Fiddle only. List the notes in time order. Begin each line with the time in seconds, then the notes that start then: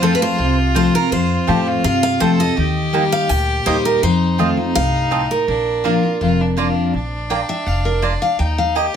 Already playing: F4
1.48 G4
1.67 F4
2.21 A4
2.57 G4
4.02 D#4
4.39 F4
4.58 D#4
5.48 D4
5.85 F4
6.21 F4
6.41 D4
6.58 D4
6.94 D4
8.40 D#4
8.76 G4